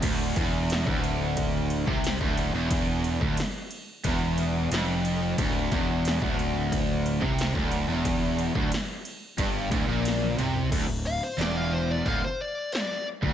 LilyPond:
<<
  \new Staff \with { instrumentName = "Lead electric guitar" } { \time 4/4 \key d \minor \tempo 4 = 90 r1 | r1 | r1 | r1 |
r8 f''16 c''16 d''16 f''16 c''16 d''16 f''16 c''16 d''8 d''8 r8 | }
  \new Staff \with { instrumentName = "Distorted electric guitar" } { \clef bass \time 4/4 \key d \minor d,8 e,8. d,4. c8 d,8 e,16~ | e,8. d,16 r4 e,4 f,4 | d,8 e,8. d,4. c8 d,8 e,16~ | e,8. d,16 r4 g,8 d,16 bes,8. c8 |
d,16 d,8 r16 e,4 d,16 r4. d,16 | }
  \new Staff \with { instrumentName = "Overdriven electric guitar" } { \clef bass \time 4/4 \key d \minor d,8 e,8. d,4. c8 d,8 e,16~ | e,8. d,16 r4 e,4 f,4 | d,8 e,8. d,4. c8 d,8 e,16~ | e,8. d,16 r4 g,8 d,16 bes,8. c8 |
d,16 d,8 r16 e,4 d,16 r4. d,16 | }
  \new Staff \with { instrumentName = "Picked electric bass" } { \clef bass \time 4/4 \key d \minor d,,8 e,,8. d,,4. c,8 d,,8 e,,16~ | e,,8. d,,16 r4 e,,4 f,,4 | d,,8 e,,8. d,,4. c,8 d,,8 e,,16~ | e,,8. d,,16 r4 g,,8 d,,16 bes,,8. c,8 |
d,,16 d,,8 r16 e,,4 d,,16 r4. d,,16 | }
  \new DrumStaff \with { instrumentName = "Drums" } \drummode { \time 4/4 <cymc bd cymr>8 <bd cymr>8 <cymr sn>16 bd16 cymr8 <bd cymr>8 cymr16 bd16 <cymr sn>16 bd16 cymr8 | <bd cymr>8 cymr16 bd16 <cymr sn>8 cymr8 <bd cymr>8 cymr8 <cymr sn>8 cymr8 | <bd cymr>8 <bd cymr>8 <cymr sn>16 bd16 cymr8 <bd cymr>8 cymr16 bd16 <cymr sn>16 bd16 cymr8 | <bd cymr>8 cymr16 bd16 <cymr sn>8 cymr8 <bd cymr>8 <bd cymr>8 <cymr sn>16 tommh16 <cymr toml>16 tomfh16 |
<cymc hho bd>4 <hho sn>4 <hho bd>4 <hho sn>8. bd16 | }
>>